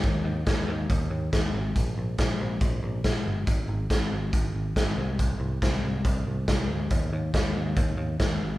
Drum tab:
HH |x-x-x-x-|x-x-x-x-|x-x-x-x-|x-x-x-x-|
SD |--o---o-|--o---o-|--o---o-|--o---o-|
BD |o-o-o-o-|o-o-o-o-|o-o-o-o-|o-o-o-o-|

HH |x-x-x-x-|
SD |--o---o-|
BD |o-o-o-o-|